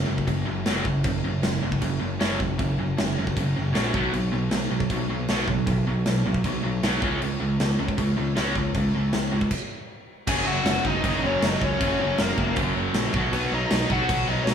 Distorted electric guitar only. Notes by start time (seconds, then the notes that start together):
0.06 F#2 C#3
0.27 F#2 C#3
0.45 F#2 C#3
0.66 F#2 C#3 F#3
0.84 F#2 C#3
1.05 F#2 C#3
1.24 F#2 C#3
1.43 F#2 C#3
1.63 F#2 C#3
1.81 F#2 C#3
2.00 F#2 C#3
2.19 F#2 C#3 F#3
2.39 F#2 C#3
2.58 F#2 C#3
2.78 F#2 C#3
2.97 F#2 C#3
3.18 F#2 C#3
3.37 F#2 C#3
3.56 F#2 C#3
3.73 F#2 C#3 F#3
3.94 B2 F#3 B3
4.14 B2 F#3
4.32 B2 F#3
4.51 B2 F#3
4.71 B2 F#3
4.91 B2 F#3
5.10 B2 F#3
5.30 B2 F#3 B3
5.48 B2 F#3
5.66 B2 F#3
5.87 B2 F#3
6.08 B2 F#3
6.26 B2 F#3
6.46 B2 F#3
6.63 B2 F#3
6.84 B2 F#3 B3
7.02 C#3 G#3 C#4
7.23 C#3 G#3
7.40 C#3 G#3
7.60 C#3 G#3
7.79 C#3 G#3
7.97 C#3 G#3
8.17 C#3 G#3
8.36 C#3 G#3 C#4
8.57 C#3 G#3
8.75 C#3 G#3
8.95 C#3 G#3
9.13 C#3 G#3
9.32 C#3 G#3
10.27 F#2 C#3 F#3
11.02 F#2 C#3
11.07 F#3
11.79 F#2 C#3 F#3
12.54 F#2 C#3 F#3
13.13 B2 F#3
13.18 B3
13.88 F#3 B3
13.93 B2